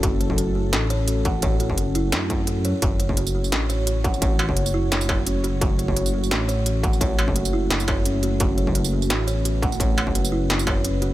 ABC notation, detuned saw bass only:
X:1
M:4/4
L:1/16
Q:"Swing 16ths" 1/4=172
K:F#m
V:1 name="Detuned saw bass" clef=bass
F,,,8 A,,,8- | A,,,3 F,,,4- F,,, F,,6- F,, z | F,,,8 A,,,8- | A,,,3 F,,,4- F,,, F,,,8 |
F,,,8 A,,,8- | A,,,3 F,,,4- F,,, F,,,8 | F,,,8 A,,,8- | A,,,3 F,,,4- F,,, F,,,8 |]